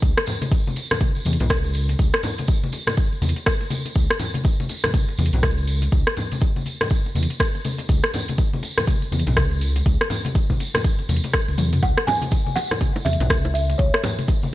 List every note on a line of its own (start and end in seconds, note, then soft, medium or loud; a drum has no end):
0.02 0.14 C#2 loud
0.02 kick loud
0.02 closed hi-hat medium
0.02 tambourine medium
0.18 cross-stick loud
0.18 closed hi-hat soft
0.26 open hi-hat medium
0.26 tambourine medium
0.26 muted conga medium
0.26 low conga loud
0.42 closed hi-hat soft
0.42 tambourine soft
0.42 high conga loud
0.52 kick loud
0.52 closed hi-hat medium
0.52 tambourine medium
0.52 muted conga soft
0.66 tambourine soft
0.66 high conga loud
0.76 open hi-hat medium
0.76 tambourine medium
0.76 muted conga medium
0.91 cross-stick medium
0.91 closed hi-hat soft
0.91 high conga medium
0.91 low conga loud
1.00 kick loud
1.00 closed hi-hat medium
1.00 tambourine medium
1.00 high conga medium
1.15 tambourine soft
1.15 muted conga soft
1.25 1.37 E2 medium
1.25 open hi-hat medium
1.25 tambourine medium
1.25 high conga loud
1.33 closed hi-hat medium
1.39 1.51 B1 loud
1.39 closed hi-hat soft
1.39 tambourine soft
1.39 muted conga medium
1.39 low conga loud
1.49 1.96 C#2 medium
1.49 kick loud
1.49 cross-stick loud
1.49 closed hi-hat medium
1.49 tambourine medium
1.49 high conga loud
1.64 tambourine soft
1.64 muted conga soft
1.73 open hi-hat loud
1.73 tambourine medium
1.89 closed hi-hat soft
1.89 tambourine soft
1.89 muted conga medium
1.99 2.10 C#2 loud
1.99 kick loud
1.99 closed hi-hat medium
1.99 tambourine medium
2.14 cross-stick loud
2.14 closed hi-hat soft
2.23 open hi-hat medium
2.23 tambourine medium
2.23 muted conga soft
2.23 low conga loud
2.38 closed hi-hat soft
2.38 tambourine soft
2.38 high conga medium
2.48 kick loud
2.48 closed hi-hat medium
2.48 tambourine medium
2.48 muted conga soft
2.63 tambourine soft
2.63 high conga loud
2.72 open hi-hat medium
2.72 tambourine loud
2.72 muted conga medium
2.87 cross-stick medium
2.87 closed hi-hat soft
2.87 tambourine soft
2.87 high conga medium
2.87 low conga medium
2.97 kick loud
2.97 closed hi-hat medium
2.97 tambourine soft
3.12 tambourine soft
3.12 muted conga soft
3.22 3.33 E2 medium
3.22 open hi-hat medium
3.22 tambourine medium
3.22 high conga loud
3.29 closed hi-hat soft
3.36 closed hi-hat soft
3.36 tambourine soft
3.36 muted conga soft
3.46 kick loud
3.46 cross-stick loud
3.46 closed hi-hat medium
3.46 tambourine soft
3.61 tambourine soft
3.61 muted conga soft
3.70 open hi-hat medium
3.70 tambourine loud
3.70 high conga loud
3.85 closed hi-hat soft
3.85 tambourine soft
3.85 muted conga soft
3.95 4.07 C#2 loud
3.95 kick loud
3.95 closed hi-hat medium
3.95 tambourine medium
4.11 cross-stick medium
4.11 closed hi-hat soft
4.19 open hi-hat medium
4.19 tambourine medium
4.19 muted conga medium
4.19 low conga medium
4.34 closed hi-hat soft
4.34 tambourine soft
4.34 high conga loud
4.44 kick loud
4.44 closed hi-hat medium
4.44 tambourine medium
4.44 muted conga soft
4.60 tambourine soft
4.60 high conga loud
4.69 open hi-hat medium
4.69 tambourine loud
4.69 muted conga medium
4.84 cross-stick medium
4.84 closed hi-hat soft
4.84 tambourine soft
4.84 high conga medium
4.84 low conga medium
4.94 kick loud
4.94 closed hi-hat medium
4.94 tambourine medium
4.94 high conga medium
5.09 tambourine soft
5.09 muted conga soft
5.17 5.30 E2 medium
5.17 open hi-hat medium
5.17 tambourine medium
5.17 high conga loud
5.26 closed hi-hat soft
5.32 5.45 B1 loud
5.32 closed hi-hat soft
5.32 tambourine soft
5.32 muted conga medium
5.32 low conga medium
5.43 5.89 C#2 medium
5.43 kick loud
5.43 cross-stick medium
5.43 closed hi-hat medium
5.43 tambourine soft
5.43 high conga loud
5.58 tambourine soft
5.58 muted conga soft
5.67 open hi-hat medium
5.67 tambourine loud
5.82 closed hi-hat soft
5.82 tambourine soft
5.82 muted conga soft
5.92 6.04 C#2 loud
5.92 kick loud
5.92 closed hi-hat medium
5.92 tambourine medium
6.07 cross-stick medium
6.07 closed hi-hat soft
6.17 open hi-hat medium
6.17 tambourine medium
6.17 muted conga medium
6.17 low conga medium
6.32 closed hi-hat soft
6.32 tambourine soft
6.32 high conga medium
6.41 kick loud
6.41 closed hi-hat medium
6.41 tambourine medium
6.41 muted conga soft
6.56 tambourine soft
6.56 high conga medium
6.66 open hi-hat medium
6.66 tambourine medium
6.66 muted conga medium
6.81 cross-stick medium
6.81 closed hi-hat soft
6.81 tambourine soft
6.81 high conga medium
6.81 low conga medium
6.90 kick loud
6.90 closed hi-hat medium
6.90 tambourine medium
7.05 tambourine soft
7.05 muted conga soft
7.15 7.27 E2 medium
7.15 open hi-hat medium
7.15 tambourine medium
7.15 high conga loud
7.23 closed hi-hat medium
7.30 closed hi-hat soft
7.30 tambourine soft
7.30 muted conga soft
7.40 kick loud
7.40 cross-stick medium
7.40 closed hi-hat medium
7.40 tambourine medium
7.55 tambourine soft
7.55 muted conga soft
7.65 open hi-hat medium
7.65 tambourine loud
7.65 high conga loud
7.78 closed hi-hat soft
7.78 tambourine soft
7.78 muted conga medium
7.89 8.00 C#2 loud
7.89 kick loud
7.89 closed hi-hat medium
7.89 tambourine medium
8.04 cross-stick medium
8.04 closed hi-hat soft
8.14 open hi-hat medium
8.14 tambourine medium
8.14 muted conga medium
8.14 low conga loud
8.28 closed hi-hat soft
8.28 tambourine soft
8.28 high conga medium
8.38 kick loud
8.38 closed hi-hat medium
8.38 tambourine soft
8.38 muted conga soft
8.53 tambourine soft
8.53 high conga medium
8.63 open hi-hat medium
8.63 tambourine medium
8.63 muted conga medium
8.78 cross-stick medium
8.78 closed hi-hat soft
8.78 tambourine soft
8.78 high conga medium
8.78 low conga medium
8.87 kick loud
8.87 closed hi-hat medium
8.87 tambourine medium
8.87 high conga medium
9.02 tambourine soft
9.02 muted conga soft
9.12 9.23 E2 medium
9.12 open hi-hat medium
9.12 tambourine medium
9.12 high conga loud
9.19 closed hi-hat medium
9.27 9.38 B1 loud
9.27 closed hi-hat soft
9.27 tambourine soft
9.27 muted conga medium
9.27 low conga medium
9.37 9.82 C#2 medium
9.37 kick loud
9.37 cross-stick medium
9.37 closed hi-hat medium
9.37 high conga loud
9.51 tambourine soft
9.51 muted conga soft
9.61 open hi-hat medium
9.61 tambourine medium
9.76 closed hi-hat soft
9.76 tambourine soft
9.76 muted conga medium
9.86 9.97 C#2 loud
9.86 kick loud
9.86 closed hi-hat medium
9.86 tambourine medium
10.01 cross-stick medium
10.01 closed hi-hat soft
10.10 open hi-hat medium
10.10 tambourine medium
10.10 muted conga soft
10.10 low conga loud
10.25 closed hi-hat medium
10.25 tambourine soft
10.25 high conga loud
10.35 kick loud
10.35 closed hi-hat medium
10.35 tambourine soft
10.35 muted conga soft
10.50 kick medium
10.50 tambourine soft
10.50 high conga loud
10.60 open hi-hat medium
10.60 tambourine medium
10.60 muted conga medium
10.74 cross-stick medium
10.74 closed hi-hat soft
10.74 tambourine soft
10.74 high conga medium
10.74 low conga medium
10.84 kick loud
10.84 closed hi-hat medium
10.84 tambourine medium
10.99 tambourine soft
10.99 muted conga soft
11.09 11.20 E2 medium
11.09 open hi-hat medium
11.09 tambourine loud
11.09 high conga loud
11.16 closed hi-hat medium
11.24 closed hi-hat soft
11.24 tambourine soft
11.24 muted conga medium
11.24 high conga medium
11.34 kick loud
11.34 cross-stick medium
11.34 closed hi-hat medium
11.34 tambourine medium
11.48 11.56 C#2 medium
11.48 tambourine soft
11.48 muted conga soft
11.58 11.74 E2 medium
11.58 open hi-hat medium
11.58 high tom medium
11.58 tambourine medium
11.58 high conga loud
11.73 11.80 F#2 medium
11.73 closed hi-hat soft
11.73 mid tom medium
11.73 tambourine soft
11.73 muted conga medium
11.83 11.94 C#2 loud
11.83 12.08 F#5 loud
11.83 kick loud
11.83 closed hi-hat medium
11.83 tambourine medium
11.98 cross-stick medium
11.98 closed hi-hat soft
12.07 12.58 G#5 loud
12.07 open hi-hat medium
12.07 tambourine medium
12.07 low bongo medium
12.07 muted conga medium
12.07 low conga loud
12.22 closed hi-hat soft
12.22 tambourine soft
12.22 high conga loud
12.31 kick loud
12.31 closed hi-hat medium
12.31 tambourine medium
12.31 muted conga soft
12.46 tambourine soft
12.46 high conga loud
12.56 13.07 F#5 loud
12.56 open hi-hat medium
12.56 tambourine medium
12.56 low bongo medium
12.56 muted conga medium
12.71 cross-stick medium
12.71 closed hi-hat soft
12.71 high bongo medium
12.71 high conga medium
12.71 low conga medium
12.80 kick loud
12.80 closed hi-hat medium
12.80 tambourine soft
12.80 low bongo medium
12.80 high conga loud
12.95 tambourine soft
12.95 high bongo medium
12.95 muted conga soft
13.05 13.17 E2 medium
13.05 13.53 E5 loud
13.05 open hi-hat medium
13.05 tambourine medium
13.05 low bongo medium
13.05 high conga loud
13.13 closed hi-hat medium
13.20 13.31 B1 loud
13.20 closed hi-hat soft
13.20 tambourine soft
13.20 muted conga medium
13.20 low conga loud
13.30 13.76 C#2 medium
13.30 kick loud
13.30 cross-stick medium
13.30 closed hi-hat medium
13.30 tambourine soft
13.30 high conga loud
13.45 tambourine soft
13.45 high bongo medium
13.45 muted conga soft
13.54 13.80 E5 medium
13.54 open hi-hat loud
13.54 tambourine medium
13.70 closed hi-hat soft
13.70 tambourine soft
13.70 muted conga medium
13.78 13.91 C#2 loud
13.78 14.54 C#5 medium
13.78 kick loud
13.78 closed hi-hat medium
13.78 tambourine medium
13.94 cross-stick loud
13.94 closed hi-hat soft
14.03 open hi-hat medium
14.03 tambourine loud
14.03 low bongo loud
14.03 muted conga medium
14.03 low conga loud
14.19 closed hi-hat soft
14.19 tambourine soft
14.19 high conga medium
14.28 kick loud
14.28 closed hi-hat medium
14.28 tambourine medium
14.28 muted conga soft
14.42 tambourine soft
14.42 high conga loud